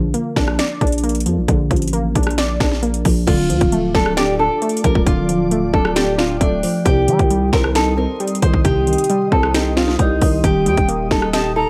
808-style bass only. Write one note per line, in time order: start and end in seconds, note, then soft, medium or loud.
0.00 0.13 A#1 loud
0.36 0.58 A#1 loud
0.81 1.27 A#1 loud
1.26 1.39 F2 loud
1.37 1.48 A#1 loud
1.48 1.70 A#1 loud
1.71 2.14 A1 loud
2.15 2.58 A#1 loud
2.60 3.03 A#1 loud
3.05 3.27 A#1 loud
3.27 3.51 D1 loud
3.50 3.60 D2 loud
3.61 3.93 D1 loud
3.95 4.48 D1 loud
4.84 4.95 A1 loud
4.95 5.06 D1 loud
5.07 5.71 D1 loud
5.74 6.38 D1 loud
6.41 6.62 D1 loud
6.86 7.10 C2 loud
7.08 7.19 G3 loud
7.19 7.52 C2 loud
7.53 8.07 C2 loud
8.42 8.96 C2 loud
9.32 9.96 C2 loud
9.99 10.21 C2 loud
10.22 10.43 C2 loud
10.44 10.68 D#1 loud
10.66 10.77 D#2 loud
10.78 11.10 D#1 loud
11.11 11.65 D#1 loud